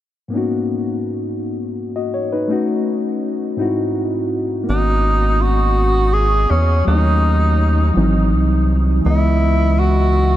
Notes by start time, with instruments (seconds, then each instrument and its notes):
0.28 reed electric piano G#2 A#3 B3
0.34 reed electric piano C#4 D#4 F#4
1.96 reed electric piano F#4 D#5
2.14 reed electric piano C#5
2.32 reed electric piano D#4 B4
2.48 reed electric piano A3 C#4 D#4
2.53 reed electric piano F#4
3.57 reed electric piano G#2 C4 D#4 E4
3.61 reed electric piano F#4
4.64 reed electric piano A#3 B3
4.69 analog synth bass G#1, reed electric piano C#4 F#4, tenor saxophone D#4
5.41 tenor saxophone F#4
6.13 tenor saxophone G#4
6.51 analog synth bass E2, tenor saxophone C#4
6.84 analog synth bass D#2, reed electric piano F#3 A3 C#4, tenor saxophone D#4
6.89 reed electric piano D4
6.95 reed electric piano D#4
7.93 analog synth bass G#1, reed electric piano E3 F#3 C4
7.98 reed electric piano D#4
8.33 analog synth bass C2
9.01 reed electric piano E3 G#3
9.06 analog synth bass C#2, reed electric piano B3, tenor saxophone E4
9.10 reed electric piano D#5
9.79 tenor saxophone F#4